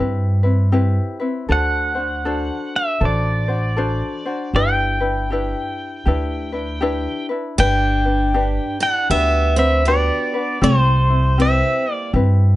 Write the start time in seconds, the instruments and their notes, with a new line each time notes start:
Already playing: upright bass G2, ukulele C4 G4
0.00 ukulele E4 B4
0.43 ukulele C4 E4 B4
0.72 ukulele C4 E4 G4 B4
1.20 ukulele C4 E4 B4
1.49 upright bass D2, ukulele D4 F#4 A4 C5, pedal steel guitar F#5
1.95 ukulele D4 F#4 C5
2.25 ukulele D4 F#4 A4 C5
2.76 pedal steel guitar E5
3.00 upright bass A1, ukulele D4 F#4 A4 C5
3.05 pedal steel guitar D5
3.48 ukulele D4 F#4 C5
3.77 ukulele D4 F#4 A4 C5
4.26 ukulele D4 F#4 C5
4.54 upright bass G1, ukulele D4 E4 G4 B4, pedal steel guitar G5
5.00 ukulele D4 E4 B4
5.30 ukulele D4 E4 G4 B4
6.06 upright bass D2, ukulele D4 E4 G4 B4
6.52 ukulele D4 E4 B4
6.81 ukulele D4 E4 G4 B4
7.29 ukulele D4 E4 B4
7.58 upright bass G1, steel-string acoustic guitar D4, ukulele D4 G4 B4, pedal steel guitar G5
8.05 ukulele D4 B4
8.34 ukulele D4 G4 B4
8.80 steel-string acoustic guitar D4, pedal steel guitar F#5
9.10 upright bass D2, steel-string acoustic guitar B3, ukulele D4 F#4 G4 B4, pedal steel guitar E5
9.56 steel-string acoustic guitar C4, ukulele D4 F#4 B4, pedal steel guitar E5
9.85 steel-string acoustic guitar B3, ukulele D4 F#4 G4 B4, pedal steel guitar D5
10.34 ukulele D4 F#4 B4
10.61 upright bass C2, steel-string acoustic guitar G3, ukulele C4 E4 G4, pedal steel guitar C5
11.10 ukulele C4 E4
11.38 ukulele C4 E4 G4 B4, steel-string acoustic guitar C4, pedal steel guitar E5
11.92 steel-string acoustic guitar A#3, pedal steel guitar D5
12.13 upright bass G2, ukulele C4 E4 G4 B4